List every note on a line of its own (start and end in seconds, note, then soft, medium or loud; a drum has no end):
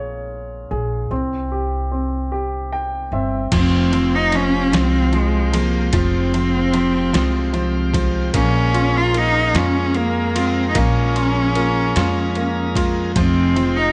0.00 0.67 A#1 medium
0.00 1.07 A#3 medium
0.00 0.67 F4 soft
0.00 0.69 G#4 soft
0.00 1.08 C#5 soft
0.71 1.09 A#1 medium
0.71 1.10 G#4 soft
1.11 3.08 C2 medium
1.11 1.90 C4 soft
1.52 2.30 G4 soft
1.92 3.11 C4 soft
2.32 3.49 G4 soft
2.73 3.10 G5 medium
3.12 3.50 G1 medium
3.12 3.51 C4 soft
3.12 3.50 E5 soft
3.52 4.69 F1 medium
3.52 5.93 F3 medium
3.52 3.91 F3 medium
3.52 4.16 C4 medium
3.52 8.30 F5 medium
3.52 8.30 G5 medium
3.52 kick loud
3.52 crash medium
3.52 ride medium
3.92 4.30 F3 soft
3.92 5.11 C4 medium
3.92 ride soft
4.15 4.37 D#4 medium
4.32 4.71 F3 soft
4.32 4.76 C#4 medium
4.32 6.73 G4 medium
4.32 ride soft
4.72 5.89 C2 medium
4.72 5.11 F3 medium
4.72 5.53 G#3 medium
4.72 5.16 C4 loud
4.72 snare loud
4.72 ride medium
5.13 5.51 F3 medium
5.13 5.55 G#3 medium
5.13 6.32 C4 medium
5.13 ride soft
5.53 5.92 F3 medium
5.53 7.13 G#3 medium
5.53 5.94 A#3 medium
5.53 ride medium
5.93 7.10 F1 loud
5.93 8.35 F3 medium
5.93 6.32 F3 medium
5.93 7.91 C4 medium
5.93 kick loud
5.93 ride medium
6.34 6.72 F3 medium
6.34 7.53 C4 medium
6.34 ride soft
6.74 7.12 F3 medium
6.74 8.42 G4 medium
6.74 ride medium
7.13 8.30 C2 medium
7.13 7.52 F3 medium
7.13 7.94 G#3 medium
7.13 snare loud
7.13 ride medium
7.53 7.92 F3 medium
7.53 8.42 C4 medium
7.53 ride soft
7.93 8.33 F3 medium
7.93 9.54 G#3 medium
7.93 kick medium
7.93 ride medium
8.34 9.51 A#1 loud
8.34 10.75 F3 medium
8.34 9.12 A#3 medium
8.34 8.98 C#4 loud
8.34 13.12 G#4 medium
8.34 13.12 A#4 medium
8.34 13.12 A#5 medium
8.34 kick loud
8.34 ride medium
8.74 9.95 C#4 medium
8.74 9.54 F4 medium
8.74 ride soft
8.97 9.08 F4 loud
9.08 9.19 F4 medium
9.14 9.94 A#3 medium
9.14 9.58 D#4 loud
9.14 11.55 F4 medium
9.14 ride medium
9.54 10.71 F2 medium
9.54 10.35 G#3 medium
9.54 9.98 C#4 medium
9.54 10.34 F4 medium
9.54 snare loud
9.54 ride medium
9.94 10.73 A#3 medium
9.94 10.39 A#3 medium
9.94 ride soft
10.35 11.95 G#3 medium
10.35 10.69 C4 medium
10.35 11.14 F4 medium
10.35 ride medium
10.69 10.79 D#4 medium
10.75 11.92 A#1 loud
10.75 13.15 F3 medium
10.75 11.54 A#3 medium
10.75 12.77 C#4 medium
10.75 kick loud
10.75 ride medium
11.15 12.34 C#4 medium
11.15 11.95 F4 medium
11.15 ride soft
11.55 12.35 A#3 medium
11.55 13.92 F4 medium
11.55 ride soft
11.96 13.12 F2 medium
11.96 12.75 G#3 medium
11.96 12.74 F4 medium
11.96 snare loud
11.96 ride medium
12.35 13.14 A#3 medium
12.35 13.24 C#4 medium
12.35 ride soft
12.75 13.92 G#3 medium
12.75 13.15 F4 soft
12.75 kick medium
12.75 ride medium
13.16 13.92 F1 medium
13.16 13.92 F3 medium
13.16 13.54 F3 medium
13.16 13.92 G#3 medium
13.16 13.78 C4 medium
13.16 13.92 F4 medium
13.16 13.92 G5 medium
13.16 kick loud
13.16 ride medium
13.56 13.92 F3 medium
13.56 13.92 C4 medium
13.56 ride soft
13.76 13.92 D#4 loud